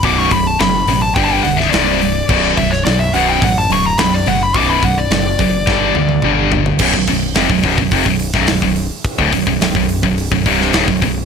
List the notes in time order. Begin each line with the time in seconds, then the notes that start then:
0.03 B0 B1 F#2 B2 D6, kick, open hi-hat
0.19 C#6
0.30 B0 B1 F#2 B5, kick, open hi-hat
0.47 A5
0.59 F#1 B1 F#2 B5, snare, open hi-hat
0.87 A1 B1 F#2, open hi-hat
1.02 A5
1.15 G1 G2 D3 G3 G5, kick, open hi-hat
1.25 A5
1.33 G5
1.43 B0 G2 D3 F#5, open hi-hat
1.56 E5, snare
1.70 C1 C2 G2 C3 D5, snare, open hi-hat
2.01 C2 G2, open hi-hat
2.29 B0 B1 F#2 B2, kick, crash
2.57 B0 B1 F#2 E5, kick, open hi-hat
2.71 C#5, snare
2.85 B1 F#2 D5, snare, open hi-hat
2.99 E5
3.14 B0 B1 F#2 B2 F#5, open hi-hat
3.29 G5
3.42 A1 B1 F#2 F#5, kick, open hi-hat
3.58 A5
3.69 D1 B1 F#2 C#6, open hi-hat
3.86 A#5
3.98 B0 B1 F#2 B5, snare, open hi-hat
4.14 D5
4.26 F#1 B1 F#2 F#5, open hi-hat
4.43 B5
4.54 B0 B1 F#2 B2 D6, kick, open hi-hat
4.70 B5
4.82 B0 B1 F#2 F#5, kick, open hi-hat
4.98 D5
5.11 F#1 B1 F#2 D5, snare, open hi-hat
5.39 F#1 B1 F#2, kick, open hi-hat
5.67 G1 G2 D3 G3, kick, snare
5.95 D2 G2 D3, high tom
6.09 high tom
6.22 G1 G2 D3 G3, mid tom
6.52 G2 D3, floor tom
6.66 floor tom
6.79 B0 B1 F#2, kick, crash
6.93 B0 B1 F#2, kick
7.07 B0 B1 F#2, kick, open hi-hat
7.35 F1 F2 C3, snare, open hi-hat
7.50 B0 B1 F#2, kick
7.63 B0 B1 F#2, kick, open hi-hat
7.78 B0 B1 F#2, kick
7.91 F1 F2 C3, kick, open hi-hat
8.06 B0 B1 F#2, kick
8.19 open hi-hat
8.33 B0 B1 F#2, kick, snare
8.47 B0 B1 F#2, snare, open hi-hat
8.62 B0 B1 F#2, kick
8.76 open hi-hat
9.04 kick, open hi-hat
9.18 D1 D2 A2, kick
9.32 B0 B1 F#2, kick, open hi-hat
9.47 B0 B1 F#2, kick
9.60 B0 B1 F#2, snare, open hi-hat
9.75 B0 B1 F#2, kick
9.89 open hi-hat
10.03 B0 B1 F#2, kick
10.18 open hi-hat
10.32 B0 B1 F#2, kick
10.46 C1 C2 G2 C3, kick, open hi-hat
10.61 snare
10.73 D1 D2 A2, snare, open hi-hat
10.87 B0 B1 F#2, kick
11.02 B0 B1 F#2, kick, open hi-hat